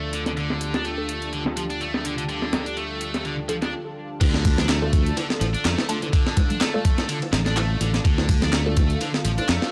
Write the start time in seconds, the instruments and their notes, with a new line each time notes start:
Already playing: fingered electric bass D2, analog synth pad D3 D4 F4 A4 A5, distorted electric guitar A3, downlifter
0.13 distorted electric guitar D3, closed hi-hat, ride
0.26 distorted electric guitar D3, snare, closed hi-hat
0.37 distorted electric guitar D3, analog synth pad G4, closed hi-hat, ride
0.50 snare
0.61 closed hi-hat, open hi-hat
0.74 distorted electric guitar D4, snare, closed hi-hat
0.85 distorted electric guitar A3, closed hi-hat, ride
0.98 synth stab A3 D4 F4 A4
1.09 closed hi-hat, ride
1.22 closed hi-hat
1.33 distorted electric guitar D3, closed hi-hat, ride
1.46 snare
1.57 distorted electric guitar F3, closed hi-hat, ride
1.70 distorted electric guitar D4, closed hi-hat
1.81 distorted electric guitar A3, closed hi-hat, ride
1.94 snare
2.05 distorted electric guitar D3, closed hi-hat, ride
2.18 distorted electric guitar D3, closed hi-hat
2.29 distorted electric guitar D3, closed hi-hat, ride
2.42 snare
2.53 snare, closed hi-hat, ride
2.66 distorted electric guitar D4, closed hi-hat
2.77 distorted electric guitar A3, closed hi-hat, ride
3.01 closed hi-hat, ride
3.14 snare, closed hi-hat
3.25 distorted electric guitar D3, closed hi-hat, ride
3.39 ride
3.49 distorted electric guitar F3, synth stab A3 D4 F4 A4, closed hi-hat, ride
3.62 distorted electric guitar D4, snare, closed hi-hat
4.21 fingered electric bass D2, distorted electric guitar D3, analog synth pad D3 D4 F4 A4 A5, kick, closed hi-hat, crash, ride, high bongo
4.34 snare
4.45 kick, closed hi-hat, open hi-hat, high conga
4.57 distorted electric guitar D4, snare, closed hi-hat, high bongo, low conga
4.69 distorted electric guitar A3, snare, clap, closed hi-hat, ride
4.82 synth stab A3 D4 F4 A4, high bongo, high conga
4.93 kick, closed hi-hat, ride, low conga
5.06 closed hi-hat
5.17 distorted electric guitar D3, closed hi-hat, ride, high bongo
5.30 snare
5.41 fingered electric bass A1, distorted electric guitar F3, closed hi-hat, ride, high bongo
5.54 distorted electric guitar D4, muted fingered electric bass stroke, closed hi-hat
5.65 fingered electric bass F2, distorted electric guitar A3, snare, clap, closed hi-hat, ride
5.78 snare, high bongo
5.89 distorted electric guitar D3, synth stab A3 D4 F4 A4, closed hi-hat, ride
6.02 distorted electric guitar D3, closed hi-hat, high bongo
6.13 distorted electric guitar D3, kick, closed hi-hat, ride
6.27 snare
6.37 kick, closed hi-hat, ride, high bongo, high conga
6.50 distorted electric guitar D4, closed hi-hat, high conga, low conga
6.61 distorted electric guitar A3, snare, clap, closed hi-hat, ride, high bongo
6.74 synth stab A3 D4 F4 A4, high conga
6.85 kick, closed hi-hat, ride, low conga
6.98 snare, closed hi-hat, high bongo
7.09 distorted electric guitar D3, closed hi-hat, ride
7.22 ride, high bongo
7.33 fingered electric bass A1, distorted electric guitar F3, snare, closed hi-hat, ride
7.46 distorted electric guitar D4, snare, closed hi-hat
7.57 distorted electric guitar A3, clap, closed hi-hat, ride, high bongo
7.81 fingered electric bass A1, distorted electric guitar D3, closed hi-hat, ride, high bongo
7.94 distorted electric guitar D3, snare, closed hi-hat
8.05 fingered electric bass D2, distorted electric guitar D3, analog synth pad F5, kick, closed hi-hat, ride
8.18 snare, high bongo
8.29 kick, closed hi-hat, open hi-hat, high conga
8.42 distorted electric guitar D4, snare, closed hi-hat, high bongo, low conga
8.53 distorted electric guitar A3, snare, clap, closed hi-hat, ride
8.66 synth stab A3 D4 F4 A4, high conga
8.77 kick, closed hi-hat, ride, high bongo, low conga
8.90 closed hi-hat
9.01 distorted electric guitar D3, closed hi-hat, ride, high bongo
9.14 snare
9.25 fingered electric bass A1, distorted electric guitar F3, closed hi-hat, ride
9.38 distorted electric guitar D4, muted fingered electric bass stroke, closed hi-hat, high bongo
9.49 fingered electric bass F2, distorted electric guitar A3, snare, clap, closed hi-hat, ride
9.62 snare, high bongo